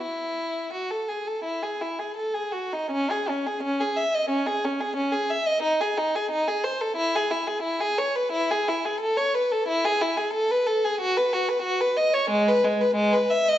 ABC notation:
X:1
M:4/4
L:1/16
Q:1/4=89
K:E
V:1 name="Violin"
E4 F A G A E G E G A G F D | [K:C#m] C G C G C G e d C G C G C G e d | D G D G D G ^B A E G E G E G c =B | E G E G A c B A E G E G A B A G |
F B F B F B d c G, B G, B G, B e d |]